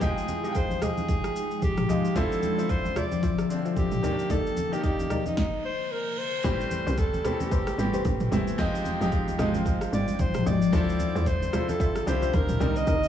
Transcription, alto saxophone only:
0.02 0.58 G#4 loud
0.56 0.84 C5 medium
0.83 1.63 G#4 loud
1.63 2.18 G4 medium
2.17 2.72 A4 loud
2.70 2.99 C5 loud
2.97 3.50 D5 loud
3.77 4.32 G4 loud
4.31 4.75 A4 loud
4.73 4.84 G4 loud
4.85 5.24 G4 medium
5.27 5.37 D#4 medium
5.38 5.63 D#4 medium
5.65 5.93 C5 loud
5.92 6.20 A#4 medium
6.18 7.00 C5 loud
6.99 7.43 A4 medium
7.41 8.21 G4 medium
9.94 10.22 D5 medium
10.20 10.49 C5 loud
10.47 11.29 D5 loud
11.27 11.71 C5 loud
11.70 12.09 A4 loud
12.08 12.36 C5 loud
12.35 12.78 A#4 loud
12.77 13.08 D#5 loud

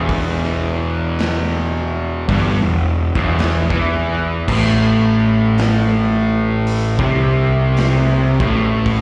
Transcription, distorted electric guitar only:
0.00 2.27 E2 loud
2.28 2.58 G2 loud
2.61 3.06 E2 medium
3.16 3.69 E2 loud
3.70 4.47 E3 loud
4.48 6.97 A2 loud
6.99 8.38 C3 loud
8.40 9.01 A2 loud

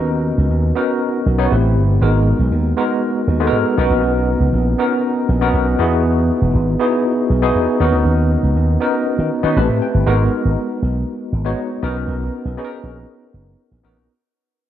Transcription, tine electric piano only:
0.00 0.56 B3 medium
0.00 0.56 C#4 medium
0.00 0.56 D#4 medium
0.00 0.56 F#4 medium
0.00 0.56 A#4 loud
0.00 1.52 B4 medium
0.75 1.25 B3 medium
0.75 1.25 C#4 medium
0.75 1.25 D#4 medium
0.75 1.26 F#4 medium
0.75 1.26 A#4 medium
1.38 1.51 B3 loud
1.38 1.51 C#4 medium
1.38 1.51 D#4 medium
1.38 1.52 F#4 medium
1.38 1.52 C#5 loud
1.51 1.91 A3 medium
1.51 1.92 C4 medium
1.51 1.92 E4 medium
1.51 1.92 G4 medium
1.51 1.92 B4 medium
2.01 2.61 G#3 medium
2.01 2.61 B3 medium
2.01 2.61 D#4 medium
2.01 2.61 F#4 medium
2.01 2.61 A#4 medium
2.77 3.26 G#3 medium
2.77 3.26 B3 medium
2.77 3.27 D#4 medium
2.77 3.27 F#4 medium
2.77 3.27 A#4 loud
3.40 3.78 G#3 medium
3.40 3.76 B3 medium
3.40 3.77 D#4 medium
3.40 3.78 F#4 medium
3.40 3.47 A4 medium
3.47 3.78 A#4 loud
3.78 4.58 B3 medium
3.78 4.58 C#4 medium
3.78 4.59 D#4 medium
3.78 4.59 F#4 medium
3.78 4.59 A#4 loud
4.78 5.28 B3 medium
4.78 5.28 C#4 medium
4.78 5.28 D#4 medium
4.78 5.28 F#4 medium
4.78 5.28 A#4 medium
5.41 5.77 B3 medium
5.41 5.79 C#4 medium
5.41 5.78 D#4 medium
5.41 5.78 F#4 medium
5.41 5.80 A#4 loud
5.79 6.59 B3 medium
5.79 6.60 D#4 medium
5.79 6.60 E4 medium
5.79 6.60 F#4 medium
5.79 6.60 G#4 loud
6.79 7.29 B3 medium
6.79 7.29 D#4 medium
6.79 7.29 E4 medium
6.79 7.29 F#4 medium
6.79 7.30 G#4 loud
7.42 7.79 B3 medium
7.42 7.79 D#4 medium
7.42 7.80 E4 medium
7.42 7.80 F#4 medium
7.42 7.81 G#4 loud
7.80 8.61 B3 medium
7.80 8.61 C#4 medium
7.80 8.61 D#4 medium
7.80 8.61 F#4 medium
7.80 8.61 A#4 loud
8.80 9.30 B3 medium
8.80 9.30 C#4 medium
8.80 9.30 D#4 medium
8.80 9.31 F#4 medium
8.80 9.31 A#4 medium
9.43 9.56 B3 medium
9.43 9.56 C#4 medium
9.43 9.56 D#4 medium
9.43 9.57 F#4 medium
9.43 9.56 B4 loud
9.56 9.97 A3 medium
9.56 9.97 C4 medium
9.56 9.97 E4 medium
9.56 9.97 G4 medium
9.56 9.97 B4 medium
9.56 9.80 A5 medium
9.82 10.05 G5 medium
10.06 10.85 G#3 loud
10.06 10.86 B3 medium
10.06 10.86 D#4 medium
10.06 10.86 F#4 loud
10.06 10.86 A#4 loud
11.45 11.75 G#3 medium
11.45 11.75 B3 medium
11.45 11.75 D#4 medium
11.45 11.75 F#4 medium
11.45 11.75 C#5 loud
11.82 12.43 B3 medium
11.82 12.43 C#4 medium
11.82 12.43 D#4 medium
11.82 12.43 F#4 medium
11.82 12.44 A#4 loud
12.57 13.37 B3 medium
12.57 13.37 C#4 medium
12.57 13.37 D#4 medium
12.57 13.37 F#4 medium
12.57 12.64 G#4 medium
12.65 13.40 A#4 loud
13.83 14.04 B3 medium
13.83 14.04 C#4 medium
13.83 14.04 D#4 medium
13.83 14.04 F#4 medium
13.83 14.04 A#4 loud

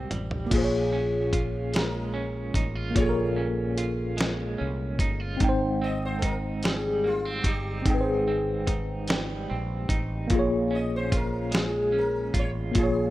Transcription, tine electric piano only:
0.00 0.45 G3 medium
0.00 0.47 D#4 medium
0.00 0.49 G4 medium
0.00 0.53 A#4 medium
0.00 0.54 C5 medium
0.46 2.90 A#3 medium
0.50 2.92 F4 medium
0.50 2.94 G#4 medium
0.58 0.61 C5 medium
0.64 2.99 C#5 medium
2.91 5.34 A#3 medium
2.91 5.36 F4 medium
2.99 5.38 G#4 medium
2.99 3.06 A4 medium
3.09 5.44 A#4 medium
5.37 7.80 C4 medium
5.41 7.82 D#4 medium
5.41 7.84 G5 medium
5.49 7.86 C5 medium
7.82 10.25 C4 medium
7.87 10.27 D#4 medium
7.87 10.29 G5 medium
7.94 7.97 B4 medium
8.01 10.34 C5 medium
10.28 12.70 A#3 medium
10.28 12.72 F4 medium
10.35 12.74 G#4 medium
10.35 12.76 C#5 medium
12.72 13.10 A#3 medium
12.72 13.10 F4 medium
12.79 13.10 G#4 medium
12.83 13.10 C#5 medium

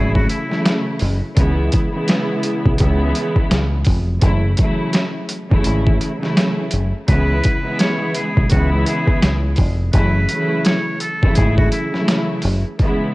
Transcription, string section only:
0.00 0.44 C#3 loud
0.00 0.44 E3 medium
0.00 0.45 F#3 medium
0.00 0.45 A3 medium
0.00 0.45 E4 loud
0.50 1.15 C#3 loud
0.50 1.15 E3 medium
0.50 1.15 F#3 medium
0.50 1.15 A3 loud
0.50 1.15 E4 loud
1.37 1.88 C#3 loud
1.37 1.89 E3 medium
1.37 1.89 G#3 medium
1.37 1.89 B3 medium
1.37 1.89 E4 loud
1.92 2.73 C#3 loud
1.92 2.73 E3 loud
1.92 2.73 G#3 loud
1.92 2.73 B3 loud
1.92 2.73 E4 loud
2.79 3.96 C#3 loud
2.79 3.96 E3 loud
2.79 3.96 G#3 loud
2.79 3.96 B3 loud
2.79 3.96 E4 loud
4.22 4.56 C#3 medium
4.22 4.56 E3 medium
4.22 4.56 F#3 medium
4.22 4.56 A3 medium
4.22 4.56 E4 loud
4.58 5.25 C#3 loud
4.58 5.25 E3 loud
4.58 5.25 F#3 loud
4.58 5.25 A3 loud
4.58 5.25 E4 loud
5.51 6.16 C#3 loud
5.51 6.16 E3 medium
5.51 6.16 F#3 medium
5.51 6.16 A3 medium
5.51 6.16 E4 loud
6.21 6.86 C#3 loud
6.21 6.86 E3 medium
6.21 6.87 F#3 medium
6.21 6.87 A3 loud
6.21 6.87 E4 loud
7.08 7.60 C#3 loud
7.08 7.60 E3 medium
7.08 7.60 G#3 medium
7.08 7.60 B3 medium
7.08 7.60 E4 loud
7.63 8.44 C#3 loud
7.63 8.44 E3 loud
7.63 8.45 G#3 loud
7.63 8.45 B3 loud
7.63 8.45 E4 loud
8.51 9.67 C#3 loud
8.51 9.67 E3 loud
8.51 9.68 G#3 loud
8.51 9.68 B3 loud
8.51 9.68 E4 loud
9.94 10.27 C#3 medium
9.94 10.27 E3 medium
9.94 10.27 F#3 medium
9.94 10.27 A3 medium
9.94 10.28 E4 loud
10.29 10.96 C#3 loud
10.29 10.96 E3 loud
10.29 10.96 F#3 loud
10.29 10.96 A3 loud
10.29 10.97 E4 loud
11.23 11.87 C#3 loud
11.23 11.87 E3 medium
11.23 11.87 F#3 medium
11.23 11.87 A3 medium
11.23 11.88 E4 loud
11.93 12.58 C#3 loud
11.93 12.58 E3 loud
11.93 12.58 F#3 medium
11.93 12.58 A3 loud
11.93 12.58 E4 loud
12.80 13.14 C#3 loud
12.80 13.14 E3 medium
12.80 13.14 G#3 medium
12.80 13.14 B3 medium
12.80 13.14 E4 loud

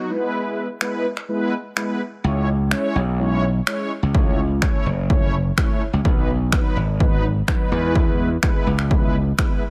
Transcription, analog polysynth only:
0.00 0.10 F#4 loud
0.10 0.67 G#3 loud
0.10 0.67 B3 medium
0.10 0.67 E4 medium
0.10 0.67 B4 loud
0.81 1.06 G#3 loud
0.81 1.06 B3 medium
0.81 1.06 E4 medium
0.81 1.06 B4 loud
1.29 1.53 G#3 loud
1.29 1.54 B3 medium
1.29 1.54 E4 medium
1.29 1.54 B4 loud
1.76 2.01 G#3 medium
1.76 2.01 B3 medium
1.76 2.01 E4 medium
1.76 2.01 B4 loud
2.24 2.49 G#3 medium
2.24 2.49 C#4 medium
2.24 2.49 E4 medium
2.24 2.49 C#5 loud
2.71 2.96 G#3 loud
2.71 2.96 C#4 medium
2.71 2.96 E4 medium
2.71 2.97 C#5 loud
3.19 3.44 G#3 loud
3.19 3.44 C#4 loud
3.19 3.44 E4 medium
3.19 3.44 C#5 loud
3.67 3.92 G#3 medium
3.67 3.92 C#4 medium
3.67 3.92 E4 medium
3.67 3.92 C#5 loud
4.14 4.39 A3 medium
4.14 4.39 C#4 medium
4.14 4.39 E4 medium
4.14 4.39 C#5 loud
4.62 4.87 A3 loud
4.62 4.87 C#4 medium
4.62 4.87 E4 medium
4.62 4.87 C#5 loud
5.10 5.34 A3 loud
5.10 5.34 C#4 loud
5.10 5.35 E4 loud
5.10 5.35 C#5 loud
5.57 5.82 A3 medium
5.57 5.82 C#4 medium
5.57 5.82 E4 medium
5.57 5.82 C#5 loud
6.05 6.30 F#3 medium
6.05 6.30 B3 medium
6.05 6.30 D#4 medium
6.05 6.30 B4 loud
6.53 6.77 F#3 loud
6.53 6.77 B3 medium
6.53 6.78 D#4 medium
6.53 6.78 B4 loud
7.00 7.25 F#3 loud
7.00 7.25 B3 medium
7.00 7.25 D#4 loud
7.00 7.25 B4 loud
7.48 7.72 F#3 medium
7.48 7.70 B3 medium
7.48 7.72 D#4 medium
7.48 7.71 B4 loud
7.72 8.29 G#3 loud
7.72 8.29 B3 medium
7.72 8.29 E4 medium
7.72 8.29 B4 loud
8.43 8.68 G#3 loud
8.43 8.68 B3 loud
8.43 8.68 E4 medium
8.43 8.68 B4 loud
8.91 9.15 G#3 loud
8.91 9.15 B3 medium
8.91 9.16 E4 medium
8.91 9.16 B4 loud
9.38 9.63 G#3 medium
9.38 9.63 B3 medium
9.38 9.63 E4 medium
9.38 9.63 B4 loud

